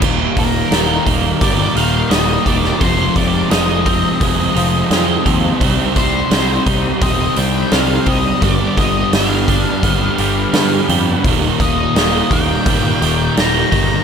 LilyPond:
<<
  \new Staff \with { instrumentName = "Lead electric guitar" } { \time 4/4 \key ees \major \tempo 4 = 86 r8 bes'4 r8 d''8 f''8 ees''8 d''8 | c''8 d''8 ees''2~ ees''8 r8 | r8 c''4 r8 ees''8 g''8 f''8 ees''8 | d''8 ees''8 f''2~ f''8 r8 |
r8 ees''4 g''4. bes''4 | }
  \new Staff \with { instrumentName = "Overdriven electric guitar" } { \time 4/4 \key ees \major <ees, bes, ees g bes ees'>8 <ees g bes ees'>8 <ees g bes ees'>8 <ees g bes ees'>8 <ees, bes, ees g bes ees'>8 <ees g bes ees'>8 <ees g bes ees'>8 <ees g bes ees'>8 | <f, c f aes c' ees'>8 <f aes c' ees'>8 <f aes c' ees'>8 <f aes c' ees'>8 <f, c f aes c' ees'>8 <f aes c' ees'>8 <f aes c' ees'>8 <f aes c' ees'>8 | <c g c' ees' g'>8 <c' ees' g'>8 <g c' ees' g'>8 <c' ees' g'>8 <c g c' ees' g'>8 <c' ees' g'>8 <g c' ees' g'>8 <c' ees' g'>8 | <g, d g b d' g'>8 <g b d' g'>8 <g b d' g'>8 <g b d' g'>8 <g, d g b d' g'>8 <g b d' g'>8 <g b d' g'>8 <g b d' g'>8 |
<ees, bes, ees g bes ees'>8 <ees g bes ees'>8 <ees g bes ees'>8 <ees g bes ees'>8 <ees, bes, ees g bes ees'>8 <ees g bes ees'>8 <ees g bes ees'>8 <ees g bes ees'>8 | }
  \new Staff \with { instrumentName = "Clean electric guitar" } { \clef bass \time 4/4 \key ees \major ees,8 bes,8 ees8 bes8 g8 ees8 g8 ees8 | f,8 c8 f8 c'8 aes8 f8 aes8 f8 | c8 g8 g8 ees'8 c'8 g8 c'8 g8 | g,8 d8 g8 d'8 b8 g8 b8 g8 |
ees,8 bes,8 ees8 bes8 g8 ees8 g8 ees8 | }
  \new Staff \with { instrumentName = "Distorted electric guitar" } { \clef bass \time 4/4 \key ees \major <ees, bes, ees>8 <bes, ees>8 <ees, bes, ees>8 <bes, ees>4 <bes, ees>8 <ees, bes, ees>4 | <f, c f>8 <c f>8 <f, c f>8 <c f>4 <c f>8 <f, c f>4 | <c g c'>8 <g c'>8 <c g c'>8 <g c'>4 <g c'>8 <c g c'>4 | <g, d g>8 <d g>8 <g, d g>8 <d g>4 <d g>8 <g, d g>4 |
<ees, bes, ees>8 <bes, ees>8 <ees, bes, ees>8 <bes, ees>4 <bes, ees>8 <ees, bes, ees>4 | }
  \new Staff \with { instrumentName = "Picked electric bass" } { \clef bass \time 4/4 \key ees \major ees,,8 ees,,8 ees,,8 ees,,8 g,,8 ees,,8 ees,,8 fes,,8 | f,,8 f,,8 f,,4 f,,8 f,,8 f,8 ees,8 | c,8 c,8 c,8 c,8 ees,,8 c,8 c,8 c,8 | g,,8 g,,8 g,,4 g,,8 g,,8 g,8 f,8 |
ees,,8 ees,,8 ees,,8 ees,,8 g,,8 ees,,8 ees,,8 g,,8 | }
  \new DrumStaff \with { instrumentName = "Drums" } \drummode { \time 4/4 <cymc bd>8 <hho bd>8 <hho sn>8 <hho bd>8 <hho bd>8 hho8 <hho sn>8 <hho bd>16 sn16 | <hho bd>8 <hho bd>8 <hho sn>8 <hho bd>8 <hho bd>8 hho8 <hho sn>8 <hho bd>8 | <hho bd>8 <hho bd>8 <hho sn>8 <hho bd>8 <hho bd>8 hho8 <hho sn>8 <hho bd>8 | <hho bd>8 <hho bd>8 <hho sn>8 <hho bd>8 <hho bd>8 hho8 <hho sn>8 hho8 |
<hho bd>8 <hho bd>8 <hho sn>8 <hho bd>8 <hho bd>8 hho8 <hho sn>8 <hho bd>8 | }
>>